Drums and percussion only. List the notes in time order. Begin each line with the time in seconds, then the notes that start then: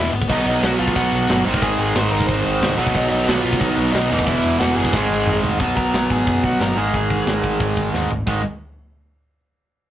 0.13 crash
0.22 kick
0.30 kick, crash
0.46 crash
0.63 snare, crash
0.79 crash
0.88 kick
0.96 kick, crash
1.13 crash
1.29 snare, crash
1.46 crash
1.54 kick
1.62 kick, crash
1.79 crash
1.95 snare, crash
2.12 crash
2.21 kick
2.29 kick, crash
2.46 crash
2.62 snare, crash
2.78 crash
2.87 kick
2.95 kick, crash
3.12 crash
3.28 snare, crash
3.45 crash
3.53 kick
3.61 kick, crash
3.78 crash
3.94 snare, crash
4.10 crash
4.19 kick
4.27 kick, crash
4.44 crash
4.60 snare, crash
4.77 crash
4.85 kick
4.93 kick, snare
5.26 mid tom
5.43 floor tom
5.59 kick, open hi-hat
5.77 kick, open hi-hat
5.94 snare, open hi-hat
6.10 kick, open hi-hat
6.27 kick, open hi-hat
6.44 kick, open hi-hat
6.61 snare, open hi-hat
6.77 open hi-hat
6.94 kick, open hi-hat
7.10 kick, open hi-hat
7.27 snare, open hi-hat
7.44 kick, open hi-hat
7.60 kick, open hi-hat
7.77 kick, open hi-hat
7.94 snare
8.10 floor tom
8.27 kick, crash